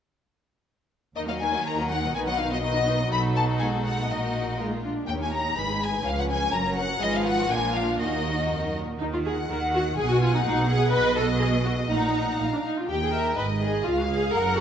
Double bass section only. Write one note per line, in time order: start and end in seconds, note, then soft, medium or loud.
1.16 2.10 D#2 soft
2.16 3.11 B1 medium
3.12 4.05 B1 soft
4.09 4.87 A#1 soft
5.08 5.53 D#2 soft
5.56 6.05 G#1 medium
6.04 6.51 C#2 medium
6.53 7.00 F#1 medium
7.01 7.46 G#1 medium
7.51 8.00 A#1 medium
8.00 8.80 D#2 soft
9.00 9.43 D#2 medium
9.49 9.91 D#2 medium
9.98 10.39 B1 medium
10.46 10.87 B1 medium
10.93 11.87 B1 medium
11.90 12.40 A#1 medium
12.41 12.49 A#1 soft
12.89 13.34 D#2 soft
13.38 13.85 G#1 soft
13.85 14.33 C#2 medium
14.34 14.61 F#1 medium